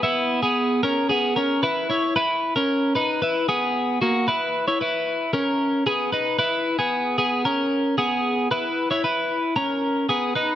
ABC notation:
X:1
M:4/4
L:1/16
Q:1/4=113
K:C#dor
V:1 name="Clean electric guitar"
[B,E]3 [B,G]3 [CA]2 [B,G]2 [CA]2 [EB]2 [Ec]2 | [EB]3 [CA]3 [DB]2 [EB]2 [B,G]4 [A,F]2 | [EB]3 [Ec] [EB]4 [CA]4 [B,G]2 [DB]2 | [EB]3 [B,G]3 [B,G]2 [CA]4 [B,G]4 |
[EB]3 [Ec] [EB]4 [CA]4 [B,G]2 [DB]2 |]